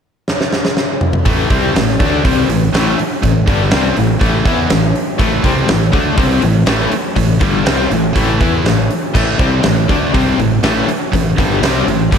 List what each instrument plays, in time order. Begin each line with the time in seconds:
0.28 snare
0.41 snare
0.53 snare
0.65 snare
0.77 snare
1.01 mid tom
1.13 mid tom
1.25 fingered electric bass A1, overdriven electric guitar A2 E3 A3, kick, open hi-hat
1.50 fingered electric bass C2, overdriven electric guitar C3 G3 C4, kick, open hi-hat
1.75 fingered electric bass A1, overdriven electric guitar A2 E3, snare, open hi-hat
2.00 fingered electric bass D2, overdriven electric guitar D3 A3 D4, kick, open hi-hat
2.24 fingered electric bass C2, overdriven electric guitar C3 G3 C4, kick, open hi-hat
2.49 fingered electric bass A1, overdriven electric guitar A2 E3, open hi-hat
2.73 fingered electric bass A1, overdriven electric guitar A2 E3 A3, snare, open hi-hat
2.97 muted distorted electric guitar stroke, muted overdriven electric guitar stroke, muted fingered electric bass stroke, open hi-hat
3.22 fingered electric bass A1, overdriven electric guitar A2 E3, kick, open hi-hat
3.47 fingered electric bass G1, overdriven electric guitar G2 D3 G3, kick, open hi-hat
3.71 fingered electric bass C2, overdriven electric guitar C3 G3 C4, snare, open hi-hat
3.96 fingered electric bass A1, overdriven electric guitar A2 E3, open hi-hat
4.20 fingered electric bass A1, overdriven electric guitar A2 E3 A3, kick, open hi-hat
4.45 fingered electric bass E2, overdriven electric guitar E3 B3 E4, kick, open hi-hat
4.70 fingered electric bass A1, overdriven electric guitar A2 E3, snare, open hi-hat
4.95 open hi-hat
5.18 fingered electric bass A1, overdriven electric guitar A2 E3 A3, kick, open hi-hat
5.43 fingered electric bass C2, overdriven electric guitar C3 G3 C4, kick, open hi-hat
5.68 fingered electric bass A1, overdriven electric guitar A2 E3, snare, open hi-hat
5.92 fingered electric bass D2, overdriven electric guitar D3 A3 D4, kick, open hi-hat
6.17 fingered electric bass C2, overdriven electric guitar C3 G3 C4, kick, open hi-hat
6.42 fingered electric bass A1, overdriven electric guitar A2 E3, open hi-hat
6.66 fingered electric bass A1, overdriven electric guitar A2 E3 A3, snare, open hi-hat
6.91 muted fingered electric bass stroke, muted overdriven electric guitar stroke, muted distorted electric guitar stroke, open hi-hat
7.16 fingered electric bass A1, overdriven electric guitar A2 E3, kick, open hi-hat
7.40 fingered electric bass G1, overdriven electric guitar G2 D3 G3, kick, open hi-hat
7.65 fingered electric bass C2, overdriven electric guitar C3 G3 C4, snare, open hi-hat
7.91 fingered electric bass A1, overdriven electric guitar A2 E3, open hi-hat
8.16 fingered electric bass A1, overdriven electric guitar A2 E3 A3, kick, open hi-hat
8.40 fingered electric bass E2, overdriven electric guitar E3 B3 E4, kick, open hi-hat
8.65 fingered electric bass A1, overdriven electric guitar A2 E3, snare, open hi-hat
8.91 open hi-hat
9.14 fingered electric bass A1, overdriven electric guitar A2 E3 A3, kick, crash
9.38 fingered electric bass C2, overdriven electric guitar C3 G3 C4, kick, open hi-hat
9.63 fingered electric bass A1, overdriven electric guitar A2 E3, snare, open hi-hat
9.88 fingered electric bass D2, overdriven electric guitar D3 A3 D4, kick, open hi-hat
10.13 fingered electric bass C2, overdriven electric guitar C3 G3 C4, kick, open hi-hat
10.37 fingered electric bass A1, overdriven electric guitar A2 E3, open hi-hat
10.62 fingered electric bass A1, overdriven electric guitar A2 E3 A3, snare, open hi-hat
10.88 muted fingered electric bass stroke, muted distorted electric guitar stroke, muted overdriven electric guitar stroke, open hi-hat
11.13 fingered electric bass A1, overdriven electric guitar A2 E3, kick, open hi-hat
11.38 fingered electric bass G1, overdriven electric guitar G2 D3 G3, kick, open hi-hat
11.61 fingered electric bass C2, overdriven electric guitar C3 G3 C4, snare, open hi-hat
11.87 fingered electric bass A1, overdriven electric guitar A2 E3, open hi-hat
12.11 fingered electric bass G1, overdriven electric guitar G2 D3 G3, kick, open hi-hat